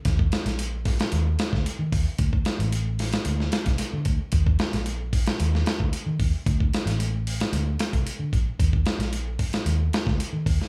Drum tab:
HH |x-xxx-oxx-x-x-o-|x-xxx-oxx-xxx-x-|x-xxx-oxx-x-x-o-|x-xxx-oxx-xxx-x-|
SD |o-oo--oo--oo----|--o---oo-oooo---|--oo---o-oo-----|--oo---o--o-----|
BD |oo----o----o--o-|oo---------o--o-|oo----o----o--o-|oo---------o--o-|

HH |x-xxx-oxx-x-x-o-|
SD |--oo---o--oo---o|
BD |oo----o----o--o-|